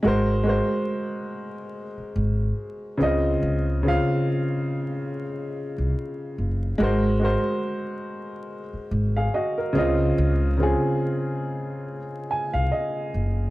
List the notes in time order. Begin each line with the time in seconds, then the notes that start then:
0.03 G#1 G#3 F#4 A#4
0.07 C5
0.43 G#3 F#4 A#4
0.49 C5
1.98 muted upright bass stroke
2.16 G#1
2.98 C#2 C#3 C4 F4
3.03 D#5
3.42 C#2
3.83 C#3 C4 F4
3.88 F5
5.78 C2
6.38 F#1
6.78 G#1 G#3 F#4 A#4
6.83 C5
7.19 G#3 F#4 A#4
7.25 C5
8.73 muted upright bass stroke
8.91 G#1
9.17 G#4 F5
9.34 F#4 D#5
9.58 A#4
9.73 C#2 C#3 C4 F4
9.78 D#5
10.18 C#2
10.57 C#3 C4 F4
10.63 G#4
12.31 G#5
12.54 C2 F5
12.72 D#5
13.14 F#1